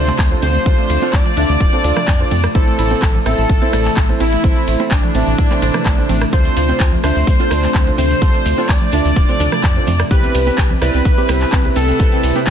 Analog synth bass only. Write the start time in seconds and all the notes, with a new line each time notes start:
Already playing: D2
0.19 D2
0.42 D2
0.66 D2
0.90 D2
1.13 D2
1.37 D2
1.49 D2
1.60 D1
1.84 D2
2.08 F2
2.31 F2
2.55 A1
2.79 A1
3.02 A1
3.26 A1
3.38 A1
3.49 A1
3.73 A1
3.97 A1
4.20 A1
4.44 A1
4.68 A1
4.91 A1
5.15 A1
5.27 A1
5.38 A2
5.62 A1
5.86 A1
6.09 A1
6.33 D2
6.57 D2
6.80 D2
7.04 D2
7.16 D2
7.27 D2
7.51 D2
7.75 D2
7.98 D2
8.22 D2
8.46 D2
8.69 D2
8.93 D2
9.05 D2
9.16 D1
9.40 D2
9.64 F2
9.87 F2
10.11 C2
10.34 C2
10.58 C2
10.82 C2
10.94 C2
11.05 C2
11.29 C2
11.53 C2
11.76 C2
12.00 C2
12.23 C2
12.47 C2